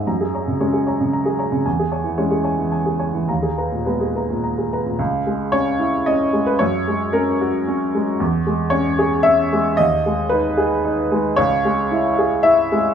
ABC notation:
X:1
M:3/4
L:1/16
Q:1/4=112
K:C#dor
V:1 name="Upright piano"
a G [ca] C, c G [ca] C, a G [ca] C, | g G [cg] E, c G [cg] E, g G [cg] E, | a G [Ba] A,, B G [Ba] A,, a G [Ba] A,, | z4 c4 d3 B |
c4 A6 z2 | z4 c4 e4 | d4 B6 z2 | c8 e4 |]
V:2 name="Upright piano" clef=bass
F,,4 [G,C]8 | E,,4 [G,C]8 | D,,4 [G,B,]8 | C,,2 G,2 C2 E2 C2 G,2 |
F,,2 G,2 C2 F2 C2 G,2 | E,,2 G,2 C2 G2 C2 G,2 | D,,2 G,2 D2 G2 D2 G,2 | C,,2 G,2 E2 G2 E2 G,2 |]